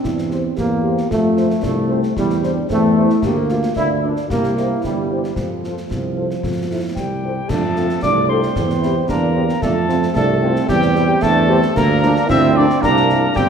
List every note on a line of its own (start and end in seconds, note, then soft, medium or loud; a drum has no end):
0.00 0.48 E2 medium
0.00 0.58 C4 medium
0.00 0.53 E4 medium
0.04 concert bass drum medium
0.04 snare medium
0.18 snare soft
0.30 0.40 G4 medium
0.30 0.40 C5 soft
0.30 snare soft
0.56 1.01 E2 medium
0.56 1.07 A#3 medium
0.56 0.68 G4 medium
0.56 concert bass drum medium
0.56 snare medium
0.83 1.08 G4 medium
0.83 0.93 G4 soft
0.83 0.93 C5 soft
0.83 0.93 C5 medium
0.98 snare soft
1.09 1.55 F2 medium
1.09 1.60 A3 medium
1.09 1.59 F4 medium
1.09 concert bass drum medium
1.09 snare medium
1.36 1.46 F4 medium
1.36 1.46 C5 medium
1.36 1.46 C5 soft
1.36 snare soft
1.50 snare soft
1.62 2.08 C2 medium
1.62 2.13 A3 medium
1.62 1.74 D4 medium
1.62 concert bass drum medium
1.62 snare medium
1.89 2.14 C4 medium
1.89 1.99 F4 medium
1.89 2.00 C5 medium
1.89 1.99 C5 medium
2.03 snare soft
2.16 2.61 E2 medium
2.16 2.57 G3 medium
2.16 2.45 E4 medium
2.16 concert bass drum medium
2.16 snare medium
2.30 snare soft
2.42 2.69 D4 medium
2.42 2.53 G4 medium
2.42 2.52 C5 medium
2.42 2.53 C5 medium
2.42 snare soft
2.70 3.10 E2 medium
2.70 3.20 A3 loud
2.70 2.95 C4 medium
2.70 concert bass drum medium
2.70 snare medium
2.95 3.21 E4 medium
2.95 3.06 G4 medium
2.95 3.05 C5 medium
2.95 3.06 C5 medium
3.10 snare soft
3.22 3.67 D2 medium
3.22 3.77 A#3 medium
3.22 3.36 G4 medium
3.22 concert bass drum medium
3.22 snare medium
3.22 crash soft
3.49 3.60 F4 medium
3.49 3.75 F4 medium
3.49 3.59 A#4 medium
3.49 3.59 D5 medium
3.49 snare soft
3.63 snare medium
3.76 4.21 D2 medium
3.76 4.31 D4 medium
3.76 3.88 E4 loud
3.76 concert bass drum medium
3.76 snare medium
4.03 4.16 D4 medium
4.03 4.14 F4 medium
4.03 4.14 A#4 medium
4.03 4.13 D5 medium
4.17 snare soft
4.29 4.74 C2 medium
4.29 4.80 A#3 medium
4.29 4.56 G4 medium
4.29 concert bass drum medium
4.29 snare medium
4.44 snare soft
4.57 5.33 E4 medium
4.57 4.67 E4 soft
4.57 4.67 G4 medium
4.57 4.67 C5 medium
4.57 4.67 G5 soft
4.57 snare soft
4.83 5.27 G1 medium
4.83 5.33 G3 medium
4.83 concert bass drum medium
4.83 snare medium
5.10 5.20 E4 soft
5.10 5.19 G4 medium
5.10 5.20 C5 soft
5.10 5.20 G5 soft
5.24 snare soft
5.36 5.81 F2 soft
5.36 7.19 F3 medium
5.36 5.81 F4 soft
5.36 concert bass drum medium
5.36 snare medium
5.64 5.74 F4 soft
5.64 5.74 A4 soft
5.64 5.74 C5 soft
5.64 5.73 F5 soft
5.64 snare soft
5.77 snare soft
5.90 6.34 C2 soft
5.90 6.39 C4 soft
5.90 concert bass drum medium
5.90 snare medium
6.16 6.26 F4 soft
6.16 6.25 A4 soft
6.16 6.25 C5 soft
6.16 6.26 F5 soft
6.30 snare soft
6.43 6.88 F2 medium
6.43 6.55 F4 soft
6.43 concert bass drum medium
6.43 snare medium
6.70 6.95 E4 medium
6.70 6.80 F4 soft
6.70 6.80 A4 soft
6.70 6.80 C5 soft
6.70 6.80 F5 soft
6.95 7.41 C2 soft
6.95 7.52 G3 medium
6.95 7.51 G4 medium
6.95 7.50 G5 medium
6.95 concert bass drum medium
6.95 snare medium
7.23 7.32 F4 soft
7.23 7.33 A4 soft
7.23 7.32 C5 soft
7.48 7.94 F2 medium
7.48 8.02 A3 medium
7.48 7.62 D4 medium
7.48 8.05 A4 medium
7.48 8.01 A5 medium
7.48 concert bass drum medium
7.48 snare medium
7.48 crash medium
7.76 7.86 C4 medium
7.76 8.02 C4 medium
7.76 7.87 F4 medium
7.76 7.86 A4 medium
7.76 snare soft
7.89 snare soft
8.02 8.47 C2 medium
8.02 8.57 A3 medium
8.02 8.31 D4 loud
8.02 8.31 D5 medium
8.02 8.27 D6 medium
8.02 concert bass drum medium
8.02 snare medium
8.28 8.39 C4 medium
8.28 9.10 C4 medium
8.28 8.39 F4 medium
8.28 8.39 A4 medium
8.28 9.09 C5 medium
8.28 9.05 C6 medium
8.43 snare soft
8.56 9.01 E2 medium
8.56 8.68 C4 medium
8.56 concert bass drum medium
8.56 snare medium
8.70 snare soft
8.81 8.93 C4 medium
8.81 8.93 E4 medium
8.81 8.93 G4 medium
8.81 snare medium
9.07 9.54 E2 medium
9.07 9.61 A#3 loud
9.07 9.33 D4 medium
9.07 9.59 A#4 medium
9.07 9.63 A#5 medium
9.07 concert bass drum medium
9.07 snare medium
9.34 9.47 C4 medium
9.34 9.45 C4 medium
9.34 9.45 G4 medium
9.49 snare medium
9.61 10.07 F2 medium
9.61 10.12 A3 medium
9.61 9.74 D4 medium
9.61 10.12 A4 loud
9.61 10.14 A5 medium
9.61 concert bass drum medium
9.61 snare medium
9.88 9.99 C4 medium
9.88 10.14 C4 medium
9.88 9.99 F4 medium
9.88 snare medium
10.03 snare medium
10.14 10.60 C2 medium
10.14 10.65 A3 loud
10.14 10.28 D4 medium
10.14 10.66 A4 loud
10.14 10.65 A5 medium
10.14 concert bass drum medium
10.14 snare medium
10.41 11.18 C4 medium
10.41 10.51 C4 medium
10.41 10.51 F4 medium
10.56 snare medium
10.68 11.13 E2 medium
10.68 11.18 G3 medium
10.68 11.24 G4 loud
10.68 11.18 G5 loud
10.68 concert bass drum medium
10.68 snare medium
10.82 snare medium
10.95 11.05 G3 medium
10.95 11.05 C4 medium
10.95 11.05 G4 medium
10.95 snare medium
11.21 11.62 E2 medium
11.21 11.76 A3 loud
11.21 11.50 D4 medium
11.21 11.78 A4 loud
11.21 11.72 A5 loud
11.21 concert bass drum medium
11.21 snare medium
11.48 11.58 G3 medium
11.48 11.58 C4 medium
11.48 11.60 C4 loud
11.48 11.58 G4 medium
11.62 snare medium
11.74 12.20 D2 loud
11.74 12.29 A#3 loud
11.74 12.01 A#3 medium
11.74 12.29 A#4 loud
11.74 12.26 A#5 loud
11.74 concert bass drum medium
11.74 snare medium
11.74 crash soft
12.02 12.12 F3 medium
12.02 12.12 A#3 medium
12.02 12.27 D4 medium
12.02 12.12 D4 medium
12.02 snare medium
12.16 snare medium
12.27 12.74 D2 loud
12.27 12.79 C4 loud
12.27 12.54 E4 loud
12.27 12.58 E5 loud
12.27 12.36 E6 loud
12.27 concert bass drum medium
12.27 snare medium
12.55 12.65 F3 medium
12.55 12.66 A#3 medium
12.55 12.67 D4 medium
12.55 12.65 D4 medium
12.55 12.83 D5 loud
12.55 12.62 D6 medium
12.70 snare medium
12.81 13.27 C2 medium
12.81 13.31 A#3 loud
12.81 13.32 D4 loud
12.81 13.34 A#4 loud
12.81 13.37 A#5 loud
12.81 concert bass drum medium
12.81 snare medium
12.97 snare medium
13.09 13.19 G3 medium
13.09 13.19 C4 medium
13.09 13.19 E4 medium
13.09 snare medium
13.35 13.49 G1 medium
13.35 13.49 G3 medium
13.35 13.49 C4 medium
13.35 13.49 G4 loud
13.35 13.49 G5 loud
13.35 concert bass drum medium
13.35 snare medium